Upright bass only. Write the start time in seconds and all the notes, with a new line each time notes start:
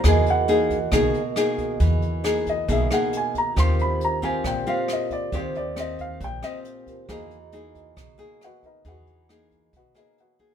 0.04 E2
0.92 B1
1.80 E2
2.69 B1
3.57 D#2
4.44 A#1
5.32 D#2
6.21 A#1
7.09 E2
7.97 B1
8.85 E2
9.73 B1